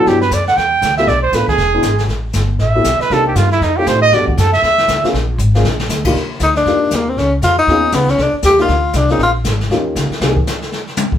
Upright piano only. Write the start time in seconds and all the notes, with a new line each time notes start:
0.07 F#3 B3 D4 E4 G4
0.98 A3 B3 D4 F4 G4
1.34 A3 B3 D4 F4 A4
1.74 G#3 B3 D4 E4 G#4
2.75 A3 B3 C4 E4 G4
3.11 A#3 C4 D4 D#4 G4
3.78 A3 C4 D#4 F4 G4
4.13 A3 B3 D4 F#4 G4
5.04 A#3 C4 D4 F4 G#4
5.55 A#3 C4 D4 F4 G#4
6.06 A#3 D4 D#4 F4 G4
6.67 A#3 D4 D#4 F4 G4
7.69 B3 C#4 D#4 F4 G#4
8.59 A#3 D4 D#4 F4 G4
9.10 A#3 C4 C#4 F4 G#4
9.71 A#3 C#4 D#4 F4 G4
10.22 A#3 C4 D#4 G4 G#4